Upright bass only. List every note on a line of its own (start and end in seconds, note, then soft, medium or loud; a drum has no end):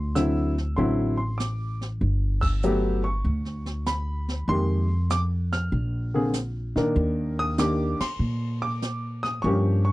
0.00 0.74 D2 medium
0.78 1.98 A1 medium
2.01 3.21 G1 medium
3.24 4.45 D2 medium
4.48 5.68 F2 medium
5.72 6.72 A#1 medium
6.76 6.95 A#2 medium
6.96 7.96 D#2 loud
8.00 muted upright bass stroke soft
8.19 9.40 A#2 medium
9.44 9.92 G2 loud